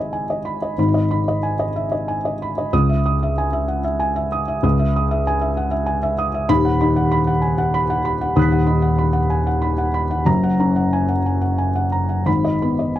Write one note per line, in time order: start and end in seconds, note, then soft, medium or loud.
0.00 0.73 G#1 medium
0.00 0.74 G#2 medium
0.00 0.80 D#4 soft
0.00 0.30 D#5 medium
0.00 0.80 E5 soft
0.00 0.13 G#5 soft
0.00 0.45 B5 medium
0.13 0.38 G#5 medium
0.30 0.55 D#5 soft
0.45 0.71 B5 soft
0.62 0.88 D#5 soft
0.78 2.69 G#1 medium
0.78 2.69 G#2 medium
0.78 1.04 B5 medium
0.94 1.20 D#5 soft
1.11 1.62 D#4 medium
1.11 1.36 B5 medium
1.28 1.53 D#5 medium
1.43 1.69 G#5 medium
1.59 1.85 D#5 medium
1.76 1.92 E5 soft
1.92 2.18 D#5 medium
2.08 2.34 G#5 medium
2.25 2.51 D#5 medium
2.42 2.67 B5 medium
2.58 2.73 D#5 soft
2.73 4.60 C#2 medium
2.73 2.98 D#6 medium
2.89 3.14 E5 medium
3.06 3.31 D#6 medium
3.23 3.47 E5 medium
3.38 3.62 G#5 medium
3.53 3.78 E5 medium
3.68 3.84 F#5 medium
3.84 4.10 E5 medium
4.00 4.25 G#5 medium
4.16 4.41 E5 medium
4.32 4.57 D#6 medium
4.48 4.73 E5 medium
4.63 6.45 C#2 medium
4.63 4.89 D#6 medium
4.79 5.04 E5 medium
4.96 5.20 D#6 medium
5.11 5.35 E5 medium
5.27 5.51 G#5 medium
5.41 5.66 E5 medium
5.57 5.72 F#5 medium
5.71 5.96 E5 medium
5.86 6.12 G#5 medium
6.03 6.28 E5 medium
6.18 6.43 D#6 medium
6.34 6.50 E5 medium
6.49 8.32 D#1 medium
6.49 8.32 D#2 medium
6.49 6.74 B5 medium
6.65 6.89 F#5 medium
6.81 7.30 D#4 medium
6.81 7.05 B5 medium
6.96 7.21 F#5 medium
7.11 7.36 B5 medium
7.27 7.52 F#5 medium
7.42 7.57 G#5 medium
7.58 7.83 F#5 medium
7.74 7.99 B5 medium
7.90 8.15 F#5 medium
8.05 8.30 B5 medium
8.21 8.46 F#5 medium
8.35 10.23 D#1 medium
8.35 10.23 D#2 medium
8.35 8.61 B5 medium
8.35 10.23 D#6 medium
8.35 10.25 F#6 soft
8.42 10.26 B6 soft
8.52 8.77 F#5 medium
8.67 9.18 D#4 medium
8.67 8.92 B5 medium
8.82 9.08 F#5 medium
8.98 9.24 B5 medium
9.13 9.40 F#5 medium
9.30 9.47 G#5 medium
9.47 9.72 F#5 medium
9.62 9.88 B5 medium
9.78 10.04 F#5 medium
9.94 10.20 B5 medium
10.11 10.27 F#5 medium
10.25 12.22 F#1 medium
10.25 12.23 F#2 medium
10.25 10.53 A#5 medium
10.43 10.70 F#5 medium
10.60 11.12 C#4 medium
10.60 10.86 A#5 medium
10.76 11.02 F#5 medium
10.93 11.19 G#5 medium
11.09 11.35 F#5 medium
11.26 11.42 G#5 medium
11.41 11.69 F#5 medium
11.58 11.85 G#5 medium
11.75 12.03 F#5 medium
11.92 12.20 A#5 medium
12.09 12.27 F#5 soft
12.25 12.99 G#1 medium
12.25 12.99 G#2 medium
12.25 12.55 B5 medium
12.44 12.72 D#5 medium
12.62 12.99 B3 soft
12.62 12.90 B5 medium
12.79 12.99 D#5 soft
12.96 12.99 G#5 medium